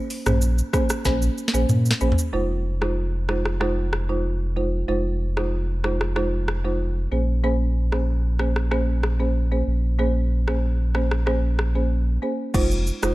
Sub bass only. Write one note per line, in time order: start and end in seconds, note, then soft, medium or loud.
0.26 0.62 A#1 loud
1.05 1.29 A#1 loud
1.54 1.66 A#1 loud
1.69 1.93 A#2 loud
2.01 2.14 A#1 medium
2.33 4.84 F1 medium
4.88 7.08 F1 medium
7.12 9.63 A#1 medium
9.67 12.18 A#1 medium
12.54 12.91 F1 loud
13.03 13.14 F1 loud